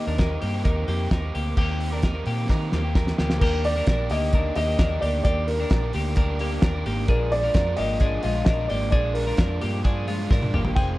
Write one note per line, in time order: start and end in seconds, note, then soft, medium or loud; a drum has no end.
0.00 0.18 D#3 medium
0.00 0.19 A#3 medium
0.00 0.20 C4 medium
0.00 0.21 G4 medium
0.00 1.06 D#5 loud
0.07 0.37 D#2 medium
0.07 0.19 D4 medium
0.07 0.17 A#4 medium
0.18 0.54 D#3 medium
0.18 0.53 A#3 medium
0.18 0.53 C4 medium
0.18 0.43 D#4 medium
0.18 0.52 G4 medium
0.18 0.41 A#4 medium
0.18 kick loud
0.18 snare loud
0.18 closed hi-hat medium
0.42 0.62 G2 medium
0.42 0.65 A#3 medium
0.42 0.64 G4 medium
0.42 open hi-hat medium
0.54 0.87 D#3 medium
0.54 0.87 A#3 medium
0.54 0.88 C4 medium
0.54 0.88 G4 medium
0.65 0.85 D#2 loud
0.65 0.88 D#4 medium
0.65 0.88 A#4 medium
0.65 kick loud
0.65 closed hi-hat medium
0.88 1.08 F2 medium
0.88 1.22 D#3 medium
0.88 1.23 A#3 medium
0.88 1.12 A#3 medium
0.88 1.22 C4 medium
0.88 1.11 G4 medium
0.88 1.21 G4 medium
0.88 open hi-hat medium
1.11 1.31 D#2 medium
1.11 1.35 D#4 medium
1.11 1.34 A#4 medium
1.11 kick loud
1.11 snare loud
1.11 closed hi-hat medium
1.22 1.56 A#3 medium
1.22 1.57 C4 medium
1.22 1.57 G4 medium
1.35 1.54 D2 medium
1.35 1.57 A#3 medium
1.35 1.56 G4 medium
1.35 open hi-hat medium
1.56 2.23 D#2 loud
1.56 1.91 D#3 medium
1.56 1.92 A#3 medium
1.56 1.90 A#3 medium
1.56 1.91 C4 medium
1.56 1.90 G4 loud
1.56 kick loud
1.56 crash medium
1.80 open hi-hat medium
1.91 2.13 A#3 soft
1.91 2.13 C4 soft
1.91 2.04 D4 medium
1.91 2.12 G4 medium
1.91 2.03 A#4 medium
2.02 2.27 D#4 medium
2.02 2.26 A#4 medium
2.02 kick loud
2.02 snare loud
2.02 closed hi-hat medium
2.13 2.47 D#3 medium
2.13 2.48 A#3 medium
2.13 2.49 C4 medium
2.13 2.49 G4 medium
2.26 2.46 A#2 medium
2.26 2.50 A#3 medium
2.26 2.49 G4 medium
2.26 open hi-hat medium
2.48 2.83 D#3 medium
2.48 2.69 D#3 loud
2.48 2.84 A#3 medium
2.48 2.84 C4 medium
2.48 2.73 D#4 medium
2.48 2.82 G4 medium
2.48 2.73 A#4 medium
2.48 kick loud
2.48 snare medium
2.72 3.12 D#2 medium
2.72 2.96 A#3 medium
2.72 2.95 G4 medium
2.72 snare medium
2.83 3.18 A#3 soft
2.83 3.18 C4 medium
2.83 3.18 G4 medium
2.95 3.19 D#4 medium
2.95 3.18 A#4 medium
2.95 kick loud
2.95 snare medium
3.07 snare medium
3.18 3.38 D2 medium
3.18 3.41 D#3 medium
3.18 3.41 A#3 medium
3.18 3.42 A#3 medium
3.18 3.42 C4 medium
3.18 3.41 G4 medium
3.18 3.42 G4 medium
3.18 snare medium
3.30 snare medium
3.39 3.80 D#2 loud
3.39 3.76 D#3 medium
3.39 3.76 A#3 medium
3.39 3.74 A#3 medium
3.39 3.76 D4 medium
3.39 3.74 G4 loud
3.39 3.64 A#4 loud
3.39 kick loud
3.39 crash loud
3.44 3.75 G4 medium
3.64 4.12 D5 loud
3.64 open hi-hat medium
3.76 3.98 A#3 soft
3.76 3.98 D4 soft
3.76 3.88 D4 medium
3.76 3.97 G4 medium
3.76 3.87 A#4 medium
3.87 4.07 A#1 medium
3.87 4.11 D4 medium
3.87 4.11 A#4 loud
3.87 kick loud
3.87 snare loud
3.87 closed hi-hat medium
3.98 4.31 D#3 medium
3.98 4.32 A#3 medium
3.98 4.33 D4 medium
3.98 4.33 G4 medium
4.10 4.49 D2 medium
4.10 4.34 A#3 medium
4.10 4.34 G4 medium
4.10 4.54 D#5 loud
4.10 open hi-hat medium
4.32 4.67 D#3 medium
4.32 4.67 A#3 medium
4.32 4.67 D4 medium
4.32 4.57 D4 medium
4.32 4.66 G4 medium
4.32 4.56 A#4 medium
4.32 kick loud
4.32 closed hi-hat medium
4.55 4.76 D#2 medium
4.55 4.80 A#3 medium
4.55 4.79 G4 medium
4.55 5.03 D#5 loud
4.55 open hi-hat medium
4.67 4.91 A#3 soft
4.67 4.90 D4 soft
4.67 4.90 G4 medium
4.79 4.99 D#2 medium
4.79 5.03 D4 medium
4.79 5.01 A#4 medium
4.79 kick loud
4.79 snare loud
4.79 closed hi-hat medium
4.91 5.24 D#3 medium
4.91 5.25 A#3 medium
4.91 5.25 D4 medium
4.91 5.25 G4 medium
5.01 5.22 D2 medium
5.01 5.24 A#3 medium
5.01 5.24 G4 medium
5.01 5.22 D5 loud
5.01 open hi-hat medium
5.24 5.64 D#2 loud
5.24 5.59 D#3 medium
5.24 5.58 A#3 medium
5.24 5.60 A#3 medium
5.24 5.59 D4 medium
5.24 5.57 G4 loud
5.24 5.58 G4 medium
5.24 5.48 D5 loud
5.24 kick loud
5.24 closed hi-hat medium
5.47 5.90 A#4 loud
5.47 open hi-hat medium
5.59 5.82 A#3 medium
5.59 5.71 D4 medium
5.59 5.82 D4 medium
5.59 5.81 G4 medium
5.59 5.70 A#4 medium
5.70 5.91 A#1 loud
5.70 5.94 D4 medium
5.70 5.94 A#4 medium
5.70 kick loud
5.70 snare loud
5.70 closed hi-hat medium
5.83 6.18 D#3 medium
5.83 6.16 A#3 medium
5.83 6.17 D4 medium
5.83 6.17 G4 medium
5.93 6.60 D2 medium
5.93 6.18 A#3 medium
5.93 6.17 G4 medium
5.93 open hi-hat medium
6.16 6.52 A#3 loud
6.16 6.51 D4 loud
6.16 6.40 D4 medium
6.16 6.50 G4 loud
6.16 6.40 A#4 medium
6.16 kick loud
6.16 closed hi-hat medium
6.39 6.63 A#3 medium
6.39 6.63 G4 medium
6.39 open hi-hat medium
6.51 6.74 A#3 soft
6.51 6.74 D4 medium
6.51 6.73 G4 medium
6.62 6.82 D#2 medium
6.62 6.86 D4 medium
6.62 6.86 A#4 medium
6.62 kick loud
6.62 snare loud
6.62 closed hi-hat medium
6.74 7.08 D#3 medium
6.74 7.09 A#3 medium
6.74 7.09 D4 medium
6.74 7.09 G4 medium
6.86 7.06 G#1 loud
6.86 7.09 A#3 medium
6.86 7.09 G4 medium
6.86 open hi-hat medium
7.08 7.48 A#1 loud
7.08 7.43 F3 medium
7.08 7.43 G#3 medium
7.08 7.43 D4 medium
7.08 7.42 D4 medium
7.08 7.42 F4 medium
7.08 7.41 G#4 loud
7.08 7.32 A#4 loud
7.08 kick loud
7.08 closed hi-hat medium
7.32 7.79 D5 loud
7.32 open hi-hat medium
7.43 7.66 G#3 medium
7.43 7.65 D4 medium
7.43 7.54 D4 medium
7.43 7.65 F4 medium
7.43 7.53 A#4 medium
7.54 7.74 F2 loud
7.54 7.78 D4 medium
7.54 7.78 A#4 medium
7.54 kick loud
7.54 snare loud
7.54 closed hi-hat medium
7.67 7.99 A#2 medium
7.67 8.00 F3 medium
7.67 8.00 G#3 medium
7.67 8.00 D4 medium
7.67 8.00 F4 medium
7.77 8.17 G#1 loud
7.77 8.01 A#3 medium
7.77 8.00 G4 medium
7.77 8.22 D#5 loud
7.77 open hi-hat medium
8.00 8.35 A#2 medium
8.00 8.35 F3 medium
8.00 8.35 G#3 medium
8.00 8.34 D4 medium
8.00 8.23 D4 medium
8.00 8.33 F4 medium
8.00 8.24 G#4 medium
8.00 kick loud
8.00 closed hi-hat medium
8.23 8.44 A#1 medium
8.23 8.47 G#3 medium
8.23 8.47 F4 medium
8.23 8.43 D#5 loud
8.23 open hi-hat medium
8.34 8.58 G#3 soft
8.34 8.58 D4 medium
8.34 8.57 F4 medium
8.45 8.66 A#1 medium
8.45 8.70 D4 medium
8.45 8.70 A#4 medium
8.45 8.69 D#5 loud
8.45 kick loud
8.45 snare loud
8.45 closed hi-hat medium
8.58 8.94 A#2 medium
8.58 8.92 F3 medium
8.58 8.92 G#3 medium
8.58 8.93 D4 medium
8.58 8.93 F4 medium
8.68 8.90 G#1 loud
8.68 8.93 A#3 medium
8.68 8.92 G4 medium
8.68 8.89 D5 loud
8.68 open hi-hat medium
8.91 9.32 A#1 loud
8.91 9.27 F3 medium
8.91 9.28 G#3 medium
8.91 9.25 D4 medium
8.91 9.28 D4 medium
8.91 9.25 G#4 loud
8.91 9.15 D5 loud
8.91 kick loud
8.91 closed hi-hat medium
8.95 9.26 F4 medium
9.14 9.57 A#4 medium
9.14 open hi-hat medium
9.27 9.50 G#3 soft
9.27 9.38 D4 medium
9.27 9.50 D4 medium
9.27 9.49 F4 medium
9.27 9.37 A#4 medium
9.37 9.58 F2 medium
9.37 9.62 D4 medium
9.37 9.61 A#4 medium
9.37 kick loud
9.37 snare loud
9.37 closed hi-hat medium
9.50 9.83 A#2 medium
9.50 9.84 F3 medium
9.50 9.85 G#3 medium
9.50 9.84 D4 medium
9.50 9.85 F4 medium
9.61 10.28 G2 loud
9.61 9.85 A#3 medium
9.61 9.84 G4 medium
9.61 open hi-hat medium
9.84 10.19 A#2 medium
9.84 10.19 F3 medium
9.84 10.07 D4 medium
9.84 10.19 D4 loud
9.84 10.18 F4 loud
9.84 10.07 G#4 medium
9.84 kick loud
9.84 closed hi-hat medium
10.08 10.31 G#3 medium
10.08 10.31 F4 medium
10.08 open hi-hat medium
10.19 10.41 G#3 medium
10.19 10.41 D4 medium
10.19 10.40 F4 medium
10.31 10.50 G#2 medium
10.31 10.54 D4 medium
10.31 10.54 A#4 medium
10.31 kick loud
10.31 snare medium
10.41 10.77 A#2 medium
10.41 10.76 F3 medium
10.41 10.76 G#3 medium
10.41 10.76 D4 medium
10.41 10.76 F4 medium
10.41 high tom medium
10.54 10.74 G1 medium
10.54 10.77 A#3 medium
10.54 10.76 G4 medium
10.54 mid tom loud
10.65 floor tom loud
10.75 10.98 F1 loud
10.75 10.98 D#3 medium
10.75 10.98 G#3 medium
10.75 10.98 C4 medium
10.75 10.98 F4 medium
10.75 10.98 G#4 loud
10.75 10.81 G5 loud
10.75 kick loud
10.75 splash medium